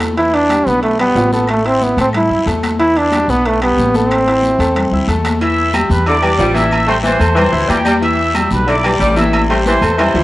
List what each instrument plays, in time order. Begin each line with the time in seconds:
Already playing: upright bass E2, grand piano A3 A4 A5
0.00 high conga, high timbale, short guiro, claves
0.17 grand piano E3 E4 E5, trombone E4, high timbale, long guiro
0.34 trombone D4, high conga, high timbale
0.49 grand piano G3 G4 G5, high conga, high timbale, short guiro, claves
0.65 upright bass B1, grand piano B3 B4 B5, trombone B3, high conga, short guiro
0.82 trombone A3, high conga, high timbale, long guiro
0.99 grand piano G3 G4 G5, trombone B3, high timbale, claves
1.15 upright bass A1, high conga, low timbale, short guiro
1.32 grand piano A3 A4 A5, trombone B3, high conga, short guiro
1.48 trombone A3, high conga, high timbale, long guiro, claves
1.65 trombone C4, grand piano E4 E5 E6, high timbale
1.81 trombone B3, high conga, short guiro
1.97 upright bass A2, grand piano A3 A4 A5, trombone C4, high conga, high timbale, short guiro
2.13 trombone E4, high conga, low conga, high timbale, long guiro, claves
2.30 upright bass F#2, grand piano E4 E5 E6, high conga
2.46 upright bass E2, grand piano A3 A4 A5, high conga, high timbale, short guiro
2.63 high conga, high timbale, short guiro, claves
2.80 grand piano E3 E4 E5, trombone E4, high conga, high timbale, long guiro
2.96 trombone D4, high conga, high timbale
3.12 grand piano G3 G4 G5, high conga, high timbale, short guiro, claves
3.28 upright bass B1, grand piano B3 B4 B5, trombone B3, high conga, short guiro
3.45 trombone A3, high conga, high timbale, long guiro
3.61 grand piano G3 G4 G5, trombone B3, high conga, high timbale, claves
3.77 upright bass A1, high conga, short guiro
3.94 grand piano A3 A4 A5, trombone C4, high conga, short guiro
4.11 high conga, high timbale, long guiro, claves
4.26 grand piano E4 E5 E6, high conga, high timbale
4.43 high conga, short guiro
4.59 upright bass E2, grand piano A3 A4 A5, high conga, high timbale, short guiro
4.75 high conga, low conga, high timbale, long guiro, claves
4.91 upright bass D2, grand piano E4 E5 E6, high conga, low conga
5.08 upright bass E2, grand piano A3 A4 A5, high conga, high timbale, short guiro
5.25 high conga, high timbale, short guiro, claves
5.41 grand piano E3 E4 E5, trumpet section E5 E6, high conga, low agogo, long guiro
5.58 high conga
5.74 grand piano G3 G4 G5, high conga, low agogo, short guiro, claves
5.90 upright bass E2, trumpet section B4 B5, high conga, short guiro
6.06 saxophone section D3, grand piano E4 E5 E6, trumpet section D5 D6, low agogo, long guiro
6.22 saxophone section E3, grand piano G3 G4 G5, high conga, low agogo, claves
6.37 upright bass A1, saxophone section G3, high conga, low timbale, short guiro
6.54 grand piano E3 E4 E5, trumpet section E5 E6, high conga, low agogo, short guiro
6.71 trumpet section E5 E6, high conga, low agogo, long guiro, claves
6.86 grand piano G3 G4 G5, saxophone section A3, trumpet section C5 C6, low agogo
7.04 saxophone section E3, trumpet section C5 C6, high conga, short guiro
7.20 upright bass E2, grand piano A3 A4 A5, high conga, low agogo, short guiro
7.36 saxophone section E3, grand piano G3 G4 G5, trumpet section C5 C6, high conga, low conga, low agogo, long guiro, claves
7.52 upright bass D2, grand piano E3 E4 E5, high conga, low conga
7.68 upright bass E2, saxophone section G3, trumpet section G4 G5, high conga, low agogo, short guiro
7.85 saxophone section G3, grand piano G3 G4 G5, high conga, low agogo, short guiro, claves
8.02 grand piano E3 E4 E5, trumpet section E5 E6, low agogo, long guiro
8.19 high conga
8.35 grand piano G3 G4 G5, high conga, low agogo, short guiro, claves
8.51 upright bass B1, trumpet section B4 B5, high conga, short guiro
8.66 saxophone section D3, grand piano E4 E5 E6, trumpet section D6, low agogo, long guiro
8.70 trumpet section D5
8.83 saxophone section E3, grand piano G3 G4 G5, high conga, low agogo, claves
8.99 upright bass A1, saxophone section G3, high conga, short guiro
9.16 grand piano E3 E4 E5, trumpet section E5 E6, high conga, low agogo, short guiro
9.33 trumpet section E5 E6, high conga, low agogo, long guiro, claves
9.49 grand piano G3 G4 G5, saxophone section A3, trumpet section C5 C6, low agogo
9.65 saxophone section E3, trumpet section C5 C6, high conga, short guiro
9.82 upright bass E2, grand piano A3 A4 A5, high conga, low agogo, short guiro
9.98 saxophone section E3, grand piano G3 G4 G5, trumpet section C5 C6, high conga, low conga, high timbale, low agogo, long guiro, claves
10.14 upright bass D2, grand piano E3 E4 E5, high conga, low conga, low timbale